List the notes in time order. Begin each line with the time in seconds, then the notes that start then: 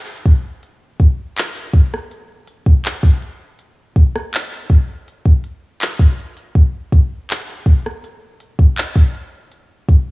0.26 kick, open hi-hat
0.63 closed hi-hat
1.00 kick, closed hi-hat
1.37 clap, closed hi-hat
1.49 closed hi-hat
1.61 closed hi-hat
1.73 kick, closed hi-hat
1.86 closed hi-hat
1.94 cross-stick
1.98 closed hi-hat
2.11 closed hi-hat
2.47 closed hi-hat
2.66 kick
2.84 clap, closed hi-hat
3.03 kick
3.22 closed hi-hat
3.59 closed hi-hat
3.96 kick, closed hi-hat
4.15 cross-stick
4.33 clap, closed hi-hat
4.69 kick, closed hi-hat
5.08 closed hi-hat
5.26 kick
5.44 closed hi-hat
5.81 clap, closed hi-hat
6.00 kick
6.18 closed hi-hat, open hi-hat
6.37 closed hi-hat
6.55 kick, closed hi-hat
6.92 kick, closed hi-hat
7.29 clap, closed hi-hat
7.42 closed hi-hat
7.54 closed hi-hat
7.66 kick, closed hi-hat
7.79 closed hi-hat
7.86 cross-stick
7.91 closed hi-hat
8.04 closed hi-hat
8.40 closed hi-hat
8.59 kick
8.77 clap, closed hi-hat
8.96 kick
9.15 closed hi-hat
9.52 closed hi-hat
9.89 kick, closed hi-hat